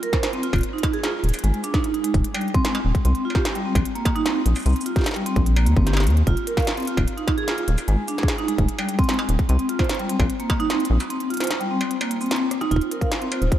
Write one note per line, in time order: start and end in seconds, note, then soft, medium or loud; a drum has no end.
0.03 0.08 A#4 medium
0.03 closed hi-hat loud
0.13 0.21 C5 medium
0.13 kick loud
0.13 snare medium
0.13 closed hi-hat soft
0.13 struck metal soft
0.23 snare loud
0.23 closed hi-hat medium
0.33 0.41 C4 medium
0.33 closed hi-hat soft
0.43 0.51 F4 medium
0.43 closed hi-hat loud
0.53 0.61 D#1 medium
0.53 kick loud
0.53 closed hi-hat soft
0.53 struck metal medium
0.56 closed hi-hat soft
0.58 closed hi-hat soft
0.61 closed hi-hat soft
0.63 closed hi-hat medium
0.73 0.77 D#4 medium
0.78 closed hi-hat soft
0.83 kick loud
0.83 closed hi-hat loud
0.83 struck metal medium
0.93 0.99 G#4 loud
0.93 closed hi-hat soft
1.03 1.07 F4 medium
1.03 snare loud
1.03 closed hi-hat medium
1.24 1.32 D#1 medium
1.24 closed hi-hat soft
1.29 closed hi-hat medium
1.34 closed hi-hat medium
1.34 struck metal soft
1.34 shaker medium
1.39 closed hi-hat medium
1.44 1.52 G#1 loud
1.44 1.49 G#3 medium
1.44 closed hi-hat medium
1.54 closed hi-hat soft
1.64 1.69 D4 medium
1.64 closed hi-hat medium
1.64 shaker medium
1.74 1.82 D#4 medium
1.74 kick loud
1.74 snare medium
1.74 closed hi-hat soft
1.84 closed hi-hat medium
1.94 2.02 D#4 medium
1.94 closed hi-hat soft
2.04 2.12 G#3 medium
2.04 closed hi-hat loud
2.14 2.22 D#1 medium
2.14 kick loud
2.14 closed hi-hat soft
2.24 closed hi-hat medium
2.34 2.38 G3 medium
2.34 closed hi-hat soft
2.34 struck metal medium
2.41 closed hi-hat soft
2.48 closed hi-hat soft
2.54 2.60 C4 loud
2.54 kick loud
2.54 closed hi-hat soft
2.65 2.68 G#3 medium
2.65 snare loud
2.65 closed hi-hat medium
2.75 closed hi-hat soft
2.75 struck metal medium
2.85 2.93 D#1 medium
2.95 kick medium
2.95 closed hi-hat soft
3.05 3.13 C2 loud
3.05 3.10 C4 medium
3.05 closed hi-hat medium
3.15 closed hi-hat soft
3.25 3.31 F4 medium
3.30 struck metal soft
3.35 3.43 G4 medium
3.35 kick loud
3.35 snare medium
3.45 snare loud
3.45 closed hi-hat medium
3.55 3.64 G3 medium
3.55 closed hi-hat soft
3.65 3.74 C4 medium
3.75 3.83 A#1 medium
3.75 kick loud
3.75 closed hi-hat medium
3.75 struck metal medium
3.85 closed hi-hat medium
3.95 3.99 A#3 medium
3.95 closed hi-hat soft
4.05 kick loud
4.05 closed hi-hat medium
4.05 struck metal medium
4.16 4.21 D#4 loud
4.16 closed hi-hat soft
4.26 4.29 C4 medium
4.26 snare loud
4.26 closed hi-hat medium
4.46 4.54 A#1 medium
4.46 closed hi-hat medium
4.56 struck metal soft
4.56 shaker medium
4.59 shaker medium
4.62 4.74 C2 loud
4.62 4.71 C4 medium
4.62 closed hi-hat medium
4.62 shaker soft
4.66 shaker soft
4.69 shaker soft
4.73 closed hi-hat soft
4.73 shaker soft
4.81 shaker medium
4.86 4.92 F4 medium
4.86 closed hi-hat medium
4.96 5.04 G4 medium
4.96 kick loud
4.96 snare soft
4.96 closed hi-hat soft
4.99 snare soft
5.01 snare soft
5.04 snare soft
5.06 snare loud
5.06 closed hi-hat medium
5.09 snare soft
5.11 snare medium
5.14 5.25 G3 medium
5.14 snare medium
5.14 closed hi-hat soft
5.26 5.35 C4 medium
5.26 closed hi-hat medium
5.36 5.68 A#1 medium
5.36 kick loud
5.36 closed hi-hat soft
5.46 closed hi-hat medium
5.56 5.60 A#3 medium
5.56 closed hi-hat soft
5.56 struck metal medium
5.66 5.75 D#2 medium
5.66 closed hi-hat medium
5.77 6.08 G1 medium
5.77 5.85 C4 medium
5.77 kick loud
5.87 5.90 G4 medium
5.87 snare medium
5.87 closed hi-hat medium
5.93 snare medium
5.93 closed hi-hat soft
5.93 struck metal medium
6.00 snare medium
6.00 closed hi-hat soft
6.07 6.23 D#2 loud
6.07 closed hi-hat medium
6.10 closed hi-hat soft
6.17 closed hi-hat soft
6.27 6.35 F1 loud
6.27 6.33 F4 medium
6.27 kick medium
6.27 closed hi-hat medium
6.37 closed hi-hat soft
6.47 6.53 A#4 medium
6.47 closed hi-hat medium
6.57 6.66 F5 medium
6.57 kick loud
6.57 snare medium
6.57 closed hi-hat soft
6.57 struck metal soft
6.60 closed hi-hat soft
6.62 closed hi-hat soft
6.65 snare loud
6.65 closed hi-hat soft
6.67 closed hi-hat medium
6.77 6.86 C4 medium
6.77 closed hi-hat soft
6.80 closed hi-hat soft
6.82 closed hi-hat soft
6.85 6.96 F4 medium
6.85 closed hi-hat soft
6.87 closed hi-hat medium
6.97 7.05 D#1 medium
6.97 kick loud
6.97 closed hi-hat soft
6.97 struck metal medium
7.08 closed hi-hat medium
7.17 7.21 D#4 medium
7.17 closed hi-hat soft
7.28 kick loud
7.28 closed hi-hat medium
7.28 struck metal medium
7.38 7.43 G#4 loud
7.38 closed hi-hat soft
7.48 7.51 F4 medium
7.48 snare loud
7.48 closed hi-hat medium
7.58 closed hi-hat soft
7.68 7.76 D#1 medium
7.68 closed hi-hat medium
7.78 closed hi-hat soft
7.78 struck metal soft
7.78 shaker medium
7.88 7.96 G#1 loud
7.88 7.94 G#3 medium
7.88 closed hi-hat medium
8.08 8.14 D4 medium
8.08 closed hi-hat medium
8.08 shaker medium
8.18 8.27 G#4 medium
8.18 snare medium
8.18 closed hi-hat soft
8.23 kick loud
8.28 snare loud
8.28 closed hi-hat medium
8.38 8.47 D#4 medium
8.38 closed hi-hat soft
8.48 8.57 G#3 medium
8.48 closed hi-hat medium
8.58 8.66 D#1 medium
8.58 kick loud
8.58 closed hi-hat soft
8.68 closed hi-hat medium
8.79 8.82 G3 medium
8.79 closed hi-hat soft
8.79 struck metal medium
8.89 closed hi-hat medium
8.99 9.04 C4 loud
8.99 kick loud
8.99 closed hi-hat soft
9.04 closed hi-hat soft
9.09 9.12 G#3 medium
9.09 snare loud
9.09 closed hi-hat medium
9.14 closed hi-hat soft
9.19 closed hi-hat soft
9.19 struck metal medium
9.29 9.37 D#1 medium
9.29 closed hi-hat medium
9.39 kick medium
9.39 closed hi-hat soft
9.49 9.57 C2 loud
9.49 9.55 C4 medium
9.49 closed hi-hat medium
9.59 closed hi-hat soft
9.69 9.75 F4 medium
9.69 closed hi-hat medium
9.79 9.88 C5 medium
9.79 kick loud
9.79 snare medium
9.79 closed hi-hat soft
9.79 struck metal soft
9.84 closed hi-hat soft
9.89 snare loud
9.89 closed hi-hat medium
9.94 closed hi-hat soft
9.99 10.08 G3 medium
9.99 closed hi-hat soft
10.09 10.18 C4 medium
10.09 closed hi-hat medium
10.20 10.28 A#1 medium
10.20 kick loud
10.20 closed hi-hat soft
10.20 struck metal medium
10.30 closed hi-hat medium
10.40 10.43 A#3 medium
10.40 closed hi-hat soft
10.50 kick loud
10.50 closed hi-hat medium
10.50 struck metal loud
10.60 10.65 D#4 loud
10.60 closed hi-hat soft
10.70 10.73 C4 medium
10.70 snare loud
10.70 closed hi-hat medium
10.80 closed hi-hat soft
10.85 closed hi-hat medium
10.90 10.98 A#1 medium
11.00 closed hi-hat soft
11.00 struck metal soft
11.00 shaker medium
11.10 11.16 C4 medium
11.10 closed hi-hat medium
11.20 closed hi-hat soft
11.30 11.36 F4 medium
11.30 closed hi-hat soft
11.34 closed hi-hat soft
11.37 11.49 C5 medium
11.37 snare medium
11.37 closed hi-hat medium
11.40 closed hi-hat medium
11.40 struck metal soft
11.44 closed hi-hat medium
11.47 snare loud
11.47 closed hi-hat medium
11.51 closed hi-hat medium
11.61 11.69 G3 medium
11.61 closed hi-hat soft
11.71 11.79 C4 medium
11.81 closed hi-hat soft
11.81 struck metal medium
11.91 closed hi-hat medium
12.01 12.04 A#3 medium
12.01 closed hi-hat soft
12.01 struck metal medium
12.11 closed hi-hat medium
12.21 12.29 C4 medium
12.21 closed hi-hat soft
12.21 shaker medium
12.26 closed hi-hat soft
12.31 12.39 C4 medium
12.31 snare loud
12.31 closed hi-hat medium
12.36 closed hi-hat soft
12.51 cross-stick medium
12.51 closed hi-hat loud
12.61 12.65 D#4 loud
12.61 cross-stick medium
12.61 closed hi-hat soft
12.71 12.79 F1 loud
12.71 12.77 F4 medium
12.71 13.59 C5 medium
12.71 kick medium
12.71 closed hi-hat medium
12.76 kick medium
12.81 closed hi-hat soft
12.91 12.97 A#4 medium
12.91 closed hi-hat medium
13.01 13.10 F5 medium
13.01 kick medium
13.01 closed hi-hat soft
13.12 snare loud
13.12 closed hi-hat medium
13.22 13.30 C4 medium
13.22 closed hi-hat soft
13.32 13.40 F4 medium
13.32 closed hi-hat medium
13.32 struck metal medium
13.42 13.50 D#1 medium
13.42 closed hi-hat soft
13.52 kick loud
13.52 closed hi-hat medium